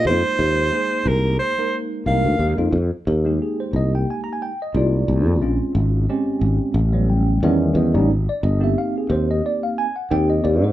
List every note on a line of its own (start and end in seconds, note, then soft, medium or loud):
0.05 0.22 F2 medium
0.05 0.68 G#3 medium
0.05 0.68 A#3 medium
0.05 0.68 D#4 medium
0.05 0.69 F4 medium
0.05 1.10 C5 loud
0.39 0.70 D#2 medium
0.72 1.52 G#3 medium
0.72 1.52 A#3 medium
0.72 1.52 D#4 medium
0.72 1.52 G#4 medium
1.06 1.37 C2 medium
1.06 1.39 A#4 medium
1.39 1.77 C5 medium
1.58 2.04 G#3 medium
1.58 2.04 A#3 medium
1.58 2.04 D#4 medium
1.58 2.04 A#4 medium
2.06 2.22 C2 medium
2.06 2.55 G#3 medium
2.06 2.55 A#3 medium
2.06 2.55 D#4 medium
2.06 2.55 A#4 medium
2.06 2.55 F5 medium
2.25 2.38 D2 medium
2.39 2.56 D#2 medium
2.57 2.72 F2 medium
2.57 2.73 G#3 medium
2.57 2.73 A#3 medium
2.57 2.74 D#4 medium
2.57 2.74 F4 medium
2.72 2.90 F2 medium
3.07 3.38 D#2 medium
3.07 3.25 A#4 medium
3.25 4.50 G#3 medium
3.25 4.50 A#3 medium
3.25 4.50 D#4 medium
3.25 4.51 G4 medium
3.42 3.59 G#4 medium
3.60 3.74 C5 medium
3.73 4.04 C2 medium
3.73 3.93 D#5 medium
3.95 4.09 G5 medium
4.10 4.20 G#5 medium
4.24 4.32 A#5 medium
4.33 4.42 G#5 medium
4.42 4.59 G5 medium
4.62 4.75 D#5 medium
4.74 5.05 C2 medium
4.74 5.38 G#3 medium
4.74 5.38 A#3 medium
4.74 5.38 D#4 medium
4.74 5.38 F4 medium
4.74 5.39 D5 medium
5.08 5.26 C2 medium
5.26 5.41 F2 medium
5.41 5.58 A#1 medium
5.41 6.05 G#3 medium
5.41 6.05 C4 medium
5.41 6.05 C#4 medium
5.41 6.05 F4 medium
5.75 6.06 G#1 medium
6.09 6.76 G#3 medium
6.09 6.76 C4 medium
6.09 6.76 C#4 medium
6.09 6.76 G4 medium
6.41 6.58 G#1 medium
6.74 7.38 A1 medium
6.93 7.40 F#3 medium
6.93 7.39 G3 medium
6.93 7.39 B3 medium
6.93 7.39 C#4 medium
7.10 7.40 G5 medium
7.43 7.73 E2 medium
7.43 7.91 D#3 loud
7.43 7.91 G3 medium
7.43 7.91 B3 medium
7.43 7.91 C#4 medium
7.43 7.74 E5 medium
7.75 7.96 E2 medium
7.75 8.07 D#5 medium
7.94 8.11 A1 medium
7.94 8.09 G3 loud
7.94 8.10 B3 medium
7.94 8.09 C#4 medium
7.94 8.10 D#4 loud
8.11 8.27 G#1 medium
8.29 8.43 D5 medium
8.43 8.74 G1 medium
8.43 8.61 D#5 medium
8.60 9.86 A#3 medium
8.60 9.85 C4 medium
8.60 9.86 D#4 medium
8.60 9.86 G4 medium
8.60 8.77 E5 medium
8.78 8.95 F5 medium
8.98 9.11 G#4 medium
9.10 9.40 D#2 medium
9.10 9.28 C5 medium
9.31 9.44 D#5 medium
9.46 9.62 D5 medium
9.63 9.77 F5 medium
9.78 9.95 G#5 medium
9.96 10.10 F#5 medium
10.11 10.42 D#2 medium
10.11 10.72 A#3 medium
10.11 10.72 C4 medium
10.11 10.72 D#4 medium
10.11 10.72 G4 medium
10.11 10.28 G5 loud
10.30 10.44 D#5 medium
10.44 10.62 D#2 medium
10.44 10.61 D5 medium
10.62 10.72 G#2 medium
10.62 10.72 C5 medium